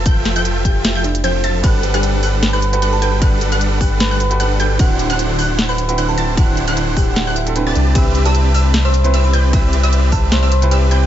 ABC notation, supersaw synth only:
X:1
M:4/4
L:1/16
Q:"Swing 16ths" 1/4=152
K:G
V:1 name="Supersaw synth"
[=F,=FAeg]3 [F,FAeg]3 [F,FAeg]3 [F,FAeg] z2 [F,FAeg]2 [F,FAea]2 | [G,DABf]3 [G,DABf]3 [G,DABf]3 [G,DABf] z2 [G,DABf]2 [G,DABg]2 | [G,DABf]3 [G,DABf]3 [G,DABf]3 [G,DABf] z2 [G,DABf]2 [G,DABg]2 | [D,DEf]3 [D,DEcf]3 [D,DEcf]3 [D,DEcf] z2 [D,DEcf]2 [D,DEca]2 |
[D,DEf]3 [D,DEcf]3 [D,DEcf]3 [D,DEcf] z3 [CGBda]3 | [CGBde]3 [CGBde]3 [CGBde]3 [CGBde] z2 [CGBde]2 [CGBdg]2 | [CGBe]3 [CGBde]3 [CGBde]3 [CGBde] z2 [CGBde]2 [CGBdg]2 |]